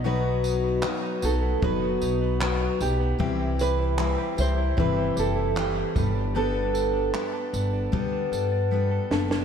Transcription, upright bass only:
X:1
M:4/4
L:1/16
Q:1/4=76
K:G
V:1 name="Upright bass" clef=bass
B,,,4- B,,, z B,,,2 F,,,2 B,,,4 B,,,2 | C,,4- C,, z C,,2 G,,,2 F,,,4 G,,,2- | G,,,4- G,,, z G,,,2 D,,2 G,,4 F,,,2 |]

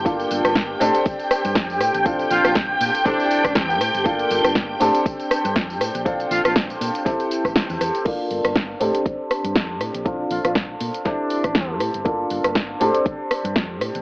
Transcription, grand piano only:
X:1
M:4/4
L:1/8
Q:"Swing 16ths" 1/4=120
K:Bblyd
V:1 name="Grand piano"
[B,DFA]3 [CDGA]4- [CDGA] | [CDFA]4 [CEGA]4 | [B,DFA]3 [CDGA]4- [CDGA] | [CDFA]4 [CEGA]4 |
[B,DF]3 [CDGA]4- [CDGA] | [CDFA]4 [CEGA]4 | [B,DFA]3 [CDGA]4- [CDGA] |]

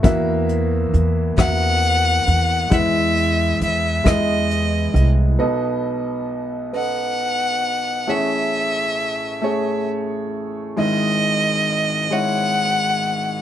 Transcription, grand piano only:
X:1
M:6/8
L:1/8
Q:3/8=45
K:E
V:1 name="Grand piano"
[^A,Fe]2 z [A,Fe]2 z | [G,Ee]2 z [G,Ed]2 z | [B,Ad]2 z [B,Ad]2 z | [A,Gc]2 z [A,Gc]2 z |
[G,Ed]2 z [G,Ec]2 z |]
V:2 name="Grand piano" clef=bass
[E,,E,]6 | [E,,E,]6 | [B,,,B,,]6 | [A,,,A,,]6 |
[G,,,G,,]6 |]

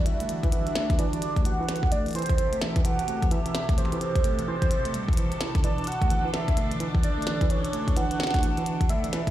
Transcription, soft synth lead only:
X:1
M:4/4
L:1/8
Q:"Swing 16ths" 1/4=129
K:Ador
V:1 name="Soft synth lead"
e4 d2 f2 | d c2 e f2 e2 | c3 c4 z | d f2 e2 z d2 |
^c2 f4 e2 |]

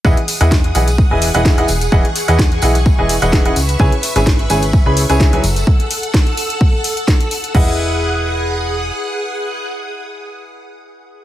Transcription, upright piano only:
X:1
M:4/4
L:1/16
Q:"Swing 16ths" 1/4=128
K:E
V:1 name="Upright piano"
[E,EGBdf] z2 [E,EGBdf] z2 [E,EGBdf] z2 [E,EGBdg] z [E,EGBdf]2 [E,EGBdf] z2 | [E,EGBdf] z2 [E,EGBdf] z2 [E,EGBdf] z2 [E,EGBdg] z [E,EGBdf]2 [C,EGBdf] z2 | [C,EGBcg] z2 [C,EGBcg] z2 [C,EGBcg] z2 [C,EGBcb] z [C,EGBcg]2 [F,EGBcg] z2 | z16 |
[EGBdf]16- | [EGBdf]16 |]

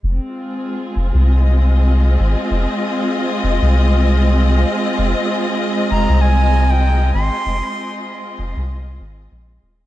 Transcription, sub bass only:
X:1
M:4/4
L:1/16
Q:"Swing 16ths" 1/4=97
K:Fm
V:1 name="Sub bass" clef=bass
F,,, z4 z F,,, C,,6- C,, A,,, z | F,,, z4 z F,,, C,,6- C,, z2 | F,,, z4 z F,,, C,,6- C,, A,,, z | F,,, z4 z F,,, C,,3 A,,,2 B,,,2 E,,,2 |]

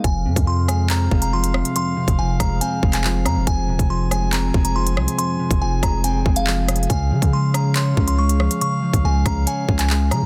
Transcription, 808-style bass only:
X:1
M:4/4
L:1/16
Q:1/4=140
K:Fm
V:1 name="808-style bass" clef=bass
F,,,2 F,, F,,6- F,, F,,,4- F,,, z | z3 F,,, F,,,2 F,,,2 z2 F,,,4 F,, F,,, | F,,,2 E,,, F,,,6- F,,, F,,,4 C,, z | z3 F,,, F,,,2 F,,,4 F,,,6 |
D,,2 D, D,6- D, D,,4- D,, z | z3 D,, D,,2 D,,2 z2 D,,4 D, D,, |]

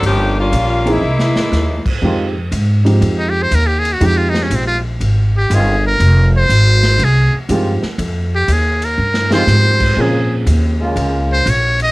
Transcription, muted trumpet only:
X:1
M:4/4
L:1/16
Q:"Swing" 1/4=121
K:Fm
V:1 name="Muted trumpet"
z16 | z8 z E G c B G A _G | G F E D C F z4 G2 A2 B2- | B2 c6 A2 z6 |
z2 G2 A2 B4 c6 | A2 z8 c2 d2 e2 |]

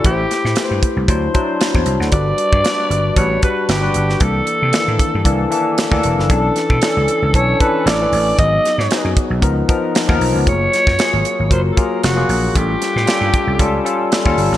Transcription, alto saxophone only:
X:1
M:4/4
L:1/16
Q:"Swing 16ths" 1/4=115
K:Amix
V:1 name="Alto saxophone"
G6 z8 z2 | d8 c2 B2 G4 | A12 z4 | A8 c2 B2 d4 |
^d6 z8 z2 | c8 =c3/2 A/2 ^A2 F4 | G12 z4 |]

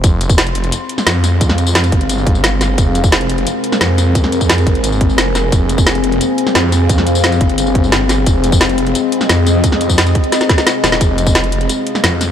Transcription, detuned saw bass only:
X:1
M:4/4
L:1/8
Q:1/4=175
K:Fm
V:1 name="Detuned saw bass" clef=bass
F,,,3 F,,, z2 F,,2- | F,,3 G,,,4- G,,, | F,,,3 F,,, z2 F,,2- | F,,3 A,,,3 F,,,2 |
F,,,3 F,,, z2 F,,2- | F,,3 G,,,4- G,,, | F,,,3 F,,, z2 F,,2- | F,,3 z4 E,,, |
F,,,3 F,,, z2 F,,2 |]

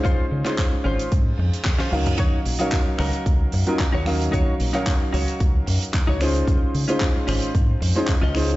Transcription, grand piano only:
X:1
M:4/4
L:1/16
Q:1/4=112
K:Ebdor
V:1 name="Grand piano"
[A,DEFc]3 [A,DEFc]8- [A,DEFc]3 [G,DEBf]2- | [G,DEBf]3 [G,DEBf]8 [G,DEFB] z2 [G,DEBf]2- | [G,DEBf]3 [G,DEBf]8- [G,DEBf]3 [A,DEFc]2- | [A,DEFc]3 [A,DEFc]8 [A,DEFc] z2 [A,DEFc]2 |]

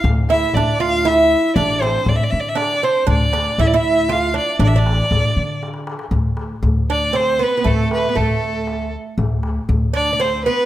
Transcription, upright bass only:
X:1
M:3/4
L:1/16
Q:1/4=118
K:Dm
V:1 name="Upright bass" clef=bass
D,,4 D,,8 | A,,,4 D,, z D,6 | D,,4 D,,8 | A,,,4 D,, z D,6 |
D,,4 D,,8 | D,,4 D,,8 | D,,4 D,,8 |]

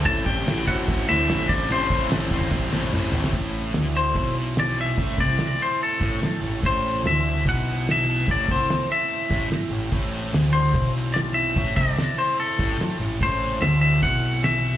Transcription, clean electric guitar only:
X:1
M:4/4
L:1/8
Q:1/4=146
K:Am
V:1 name="Clean electric guitar"
a g2 ^f2 e2 d | c2 z6 | z3 c2 z d e- | e d2 c A3 z |
c2 e2 ^f2 e2 | d c2 e3 z2 | z3 c2 z d e- | e d2 c A3 z |
c2 e e ^f2 e2 |]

